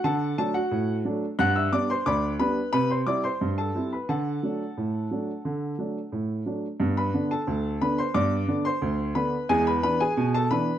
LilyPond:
<<
  \new Staff \with { instrumentName = "Grand piano" } { \time 2/4 \key g \major \tempo 4 = 89 <a' fis'' a''>8 <a' a''>16 <fis' fis''>8. r8 | <fis'' fis'''>16 <e'' e'''>16 <d'' d'''>16 <c'' c'''>16 <d'' b'' d'''>8 <b' b''>8 | <b' b''>16 <c'' c'''>16 <d'' d'''>16 <c'' c'''>8 <a' a''>8 <b' b''>16 | <a' fis'' a''>2~ |
<a' fis'' a''>4. r8 | r16 <b' b''>8 <a' a''>8. <b' b''>16 <c'' c'''>16 | <d'' d'''>8. <c'' c'''>8. <b' b''>8 | <gis' gis''>16 <b' b''>16 <b' b''>16 <gis' gis''>8 <a' a''>16 <b' b''>8 | }
  \new Staff \with { instrumentName = "Grand piano" } { \time 2/4 \key g \major d8 <fis a d'>8 a,8 <fis a d'>8 | g,8 <g b d'>8 d,8 <g b d'>8 | c8 <g c' e'>8 g,8 <g c' e'>8 | d8 <fis a d'>8 a,8 <fis a d'>8 |
d8 <fis a d'>8 a,8 <fis a d'>8 | <g, b>8 <d b d'>8 d,8 <d b d'>8 | <g, b>8 <d b d'>8 d,8 <d b d'>8 | <e, gis>8 <e b d'>8 b,8 <e b d'>8 | }
>>